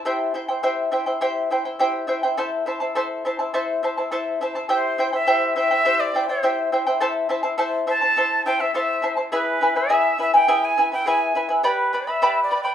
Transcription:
0.05 E4 G4 C5 E5 G5
0.34 E4 C5 E5 G5
0.48 E4 C5 G5
0.63 E4 G4 C5 E5 G5
0.92 E4 C5 E5 G5
1.06 E4 C5 G5
1.21 E4 G4 C5 E5 G5
1.50 E4 C5 E5 G5
1.65 E4 C5 G5
1.79 E4 G4 C5 E5 G5
2.07 E4 C5 E5 G5
2.23 E4 C5 G5
2.38 E4 A4 C5 E5 A5
2.66 E4 C5 E5 A5
2.80 E4 C5 A5
2.95 E4 A4 C5 E5 A5
3.25 E4 C5 E5 A5
3.39 E4 C5 A5
3.54 E4 A4 C5 E5 A5
3.83 E4 C5 E5 A5
3.97 E4 C5 A5
4.12 E4 A4 C5 E5 A5
4.41 E4 C5 E5 A5
4.55 E4 C5 A5
4.69 E4 G4 C5 E5 G5
4.98 E4 C5 E5 G5
5.13 E4 C5 E5 G5
5.27 E4 G4 C5 E5 G5
5.56 E4 C5 E5 G5
5.71 E4 C5 G5
5.85 E4 G4 C5 E5 G5
6.00 D5
6.15 E4 C5 E5 G5
6.29 E4 C5 G5
6.43 E4 G4 C5 E5 G5
6.72 E4 C5 E5 G5
6.87 E4 C5 G5
7.00 E4 A4 C5 E5 A5
7.29 E4 C5 E5 A5
7.43 E4 C5 A5
7.58 E4 A4 C5 E5 A5
7.87 E4 C5 E5 A5
8.01 E4 C5 A5
8.17 E4 A4 C5 E5 A5
8.46 E4 C5 E5 G5 A5
8.60 E4 C5 E5 A5
8.74 E4 A4 C5 E5 F5 A5
8.79 E5
9.02 E4 C5 E5 A5
9.17 E4 C5 A5
9.32 E4 G#4 B4 E5 G#5
9.61 E4 B4 E5 G#5
9.76 E4 B4 E5 G#5
9.89 E4 G#4 B4 E5 G#5
10.18 E4 B4 E5 G#5
10.34 E4 B4 G5 G#5
10.48 E4 G#4 B4 E5 G#5
10.65 G#5
10.78 E4 B4 E5 G#5
10.92 E4 B4 G5 G#5
11.06 E4 G#4 B4 E5 G#5
11.35 E4 B4 E5 G#5
11.49 E4 B4 G#5
11.63 G4 B4 D5 G5 B5
11.93 B4 D5 G5 B5
12.07 B4 D5 E5 B5
12.22 G4 B4 D5 G5 B5
12.43 D5
12.51 B4 D5 G5 B5
12.63 B4 D5 G5 B5

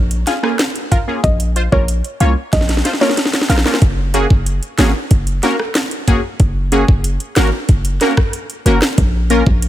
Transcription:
Already playing: A#1
0.11 closed hi-hat
0.27 F4 G#4 F5, snare, closed hi-hat
0.43 A#3 C#4 F4 G#4, cross-stick
0.59 snare, closed hi-hat
0.76 closed hi-hat
0.91 F4 A#4 F5, kick, closed hi-hat
1.08 A#3 C#4 F4 G#4
1.24 A#1 D#5, kick, closed hi-hat
1.40 closed hi-hat
1.56 F4 C5, closed hi-hat
1.72 A#1 A#3 C#4 F4 A#4 C#5, kick
1.88 closed hi-hat
2.04 closed hi-hat
2.20 C2 A#3 C#4 F4 C#5 F5, closed hi-hat
2.53 A#1 D#5, kick, snare, closed hi-hat
2.61 snare
2.69 snare, closed hi-hat
2.77 snare
2.85 F4 C5, snare, closed hi-hat
2.93 snare
3.01 A#3 C#4 F4 A#4 C#5, snare
3.09 snare
3.17 snare, closed hi-hat
3.25 snare
3.33 snare, closed hi-hat
3.41 snare
3.49 A#1 F4 A#4 F5, snare, closed hi-hat
3.58 snare
3.66 A#3 C#4 F4 A#4, snare
3.74 snare
3.82 F#1, kick, closed hi-hat
4.14 A#3 C#4 F#4 G#4, closed hi-hat
4.30 F#1, kick
4.46 closed hi-hat
4.63 closed hi-hat
4.78 G#1 A#3 C#4 F#4 G#4, snare, closed hi-hat
5.11 F#1, kick, closed hi-hat
5.27 closed hi-hat
5.43 A#3 C#4 F#4 A#4, snare, closed hi-hat
5.60 cross-stick
5.75 snare, closed hi-hat
5.91 closed hi-hat
6.08 A#3 C#4 F#4 G#4, kick, closed hi-hat
6.40 F#1, kick, closed hi-hat
6.72 A#3 C#4 F#4 G#4, closed hi-hat
6.88 F#1, kick
7.04 closed hi-hat
7.20 closed hi-hat
7.36 G#1 A#3 C#4 F#4 A#4, snare, closed hi-hat
7.69 F#1, kick, closed hi-hat
7.85 closed hi-hat
8.01 A#3 C#4 F#4 A#4, snare, closed hi-hat
8.17 kick, cross-stick
8.33 closed hi-hat
8.50 closed hi-hat
8.66 F#1 A#3 C#4 F#4 A#4, closed hi-hat
8.82 snare
8.98 A#1, kick, closed hi-hat
9.30 A#3 C#4 F4 A#4, closed hi-hat
9.47 A#1, kick
9.62 closed hi-hat

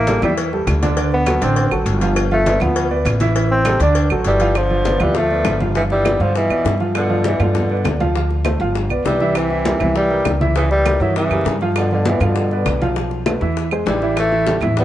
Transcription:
Already playing: A1 A#3
0.07 G3 G4 A4, cowbell, high conga
0.22 E2 E3 G3 E4 E5, high conga, low conga, claves
0.38 cowbell, high conga
0.53 G3 G4 A4, high conga
0.67 D2, cowbell, high conga, claves
0.82 D3 D4 D5, cowbell, high conga
0.97 D3 D4 D5, cowbell, high conga
1.12 B3, high conga
1.26 F#3 F#4 A4, cowbell, high conga, claves
1.41 A1 D3 C4 D4 D5, cowbell, high conga
1.56 cowbell, high conga
1.71 A1 F#3 F#4 A4, high conga, claves
1.86 G1, cowbell, high conga
2.01 F3 F4 F5, cowbell, high conga
2.16 cowbell, high conga, claves
2.31 F3 A3 F4 F5, high conga
2.46 B3 B4 D5, cowbell, high conga
2.60 D2 F3 B3 F4 F5, high conga, low conga, claves
2.76 cowbell
2.91 B3 B4 D5, high conga
3.05 A1, cowbell, high conga, claves
3.20 E3 E4 E5, cowbell, high conga
3.35 E3 E4 E5, cowbell, high conga
3.50 C4, high conga
3.65 G3 G4 A4, cowbell, high conga, claves
3.80 D2 D3 D4 D5, cowbell, high conga
3.95 cowbell, high conga
4.10 A1 F#3 F#4 A4, high conga, claves
4.24 G1 E3 G3, cowbell, high conga
4.40 F3 F4 F5, cowbell, high conga
4.55 D3 F3, high bongo, high conga, claves
4.70 F3 F4 F5, high conga
4.85 B3 B4 D5, high bongo, high conga
5.00 D2 E3 F3 G3 F4 F5, high conga, low conga, claves
5.15 F3 A3, high bongo, high conga, low conga
5.31 B3 B4 D5, high conga
5.45 G1, high bongo, low bongo, high conga, claves
5.60 F3 F4 F5, high conga
5.75 B2 E3 F3 F4 F5, high bongo, high conga
5.90 E3 G3, high bongo, high conga
6.05 B3 B4 D5, high bongo, high conga, claves
6.20 G2 D3 F3 F4 F5, high bongo, high conga
6.35 B2 E3, high bongo, high conga
6.50 F2 B3 B4 D5, high conga, claves
6.65 G2, high bongo, low bongo, high conga
6.80 F3 F4 F5, high bongo, high conga
6.95 B2 D3, high bongo, high conga, claves
7.09 F3 F4 F5, high conga
7.24 B2 E3 B3 B4 D5, high bongo, high conga
7.40 G2 B2 D3 F3 F4 F5, high conga, low conga, claves
7.55 high bongo, high conga, low conga
7.70 B3 B4 D5, high conga
7.84 D2, high bongo, low bongo, high conga, claves
8.00 F3 F4 F5, high conga
8.15 F3 F4 F5, high bongo, high conga
8.30 high bongo, high conga
8.45 A3 A4 C5, high bongo, high conga, claves
8.60 G1 F3 F4 F5, high bongo, high conga
8.74 high bongo, high conga
8.90 B1 B3 B4 D5, high conga, claves
9.05 C2 E3 G3, high bongo, low bongo, high conga
9.20 E3 E4 E5, high bongo, high conga
9.35 C3 E3, high bongo, high conga, claves
9.50 E3 E4 E5, high conga
9.65 G3 G4 A#4, high bongo, high conga
9.80 C2 E3 E4 E5, high conga, low conga, claves
9.95 E3 G3, high bongo, high conga
10.10 G3 G4 A#4, high conga
10.25 C#2, high bongo, low bongo, high conga, claves
10.41 E3 E4 E5, high conga
10.56 C#3 E3 E4 E5, high bongo, high conga
10.71 E3 G3, high bongo, high conga
10.86 G3 G4 A#4, high bongo, high conga, claves
11.00 G2 D#3 E3 F#3 E4 E5, high bongo, high conga
11.16 C#3 E3, high bongo, high conga
11.30 F#2 G3 G4 A#4, high conga, claves
11.45 G2, high bongo, low bongo, high conga
11.61 F3 F4 F5, high bongo, high conga
11.76 B2 D3, high bongo, high conga, claves
11.91 B2 D3 F3 F4 F5, high conga
12.05 B2 E3 B3 B4 D5, high bongo, high conga
12.20 G2 B2 D3 F3 F4 F5, high conga, low conga, claves
12.36 high bongo, high conga
12.51 B3 B4 D5, high conga
12.66 B1, high bongo, low bongo, high conga, claves
12.82 F3 F4 F5, high conga
12.96 F3 F4 F5, high bongo, high conga
13.11 high bongo, high conga
13.26 A3 A4 B4, high bongo, high conga, claves
13.41 E2 E3 E4 E5, high bongo, high conga
13.57 high bongo, high conga
13.71 G#3 G#4 C5, high conga, claves
13.86 A1 E3 G3, high bongo, low bongo, high conga
14.02 E3 E4 E5, high bongo, high conga
14.17 E3 A3, high bongo, high conga, claves
14.32 E3 E4 E5, high conga
14.47 G3 G4 A4, high bongo, high conga
14.61 A2 E3 E4 E5, high conga, low conga, claves
14.77 G3 B3, high bongo, high conga, low conga

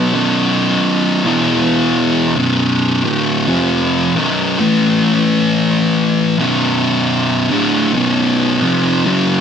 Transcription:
Already playing: B2 F#3 B3
0.14 B1 F#2 B2
1.25 E2 B2 E3
2.37 B1 F#2 B2
3.04 D2 A2 D3
3.47 F2 C3 F3
4.15 B1 F#2 B2
4.59 A2 E3 A3
6.38 B1 F#2 B2
7.51 D2 A2 D3
7.94 B1 F#2 B2
8.62 F2 C3 F3
9.06 F#2 C#3 F#3

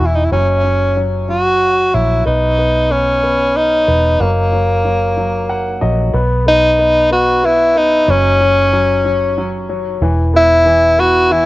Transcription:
Already playing: B3
0.00 E1 E3
0.06 E4
0.15 D#4
0.25 E4
0.32 F#1 F#3 C#4
0.64 F#3
0.97 F#3
1.29 F#3 F#4
1.94 A#1 F#3 E4
2.25 B1 B3 D#4
2.58 B3
2.90 B3 C#4
3.23 B3
3.56 D#4
3.88 E1 B3
4.20 F#1 F#3 A#3
4.53 F#3
4.85 F#3
5.17 F#3
5.49 F#5
5.81 A#1 F#3 D#5
6.14 B1 B3
6.46 B3 D#4
6.79 B3
7.11 B3 F#4
7.43 B3 E4
7.76 B3 D#4
8.08 F#1 F#3 C#4
8.41 F#3
8.73 F#3
9.05 F#3
9.38 F#3
9.69 F#3
10.02 E1 E3
10.34 B3 E4
10.66 E3
10.98 B3 F#4
11.31 E3 E4

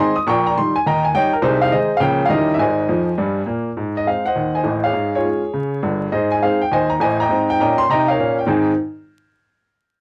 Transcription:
Already playing: D#3 G#3 C4 C6
0.00 D#5 G#5
0.16 D#6
0.27 A#1 A#2 G5 A#5 C#6
0.47 A#5
0.58 D#3 G3 D#4 C6
0.76 G#5
0.86 D#2 D#3 D#5 G5 A#5
1.05 G#5
1.14 D#3 G3 D#4 C#5 D#5 G5
1.33 A#4
1.42 C2 C3 D#4 G#4 C5
1.62 F5
1.72 D#3 G#3 D#4 G#4 C5 D#5
1.97 C#2 C#3 F5 G5
2.01 F3 A#3 C#4
2.25 D#2 G3 F5
2.29 D#3 C#4 E4 G4 A#4 D#5
2.54 E5
2.58 G#1 G#2 C5 D#5 G#5
2.89 F2 F3
3.18 G2 G3
3.46 A#2 A#3
3.77 G#2
3.97 D#5
4.07 G#3 C4 D#4 F5
4.25 C5 D#5 F#5
4.36 D#2
4.55 C5 D#5 G#5
4.64 A1 A2
4.84 G#4 C#5 F5
4.93 G#2
5.15 F4 G#4 C#5
5.25 G#3 C#4 F4
5.53 C#3
5.82 G1 G2
6.12 G#2 G#4 C5 D#5
6.32 G#5
6.42 G#3 C4 D#4 G#4 C5 F5
6.62 G5
6.72 D#2 C5 D#5 G#5
6.90 A#5
7.00 A1 A2 C5 D#5 G#5
7.20 D#5 G5 A#5
7.29 G#2 C4
7.50 G5
7.60 A#2 C#4 D#5 G5 A#5
7.78 C6
7.90 C3 D#4 D#5 G5 A#5
8.08 A#4 C#5 F5
8.18 A#2 C#4
8.39 G5
8.47 G#2 D#3 C4 D#4 G#4 C5 G#5

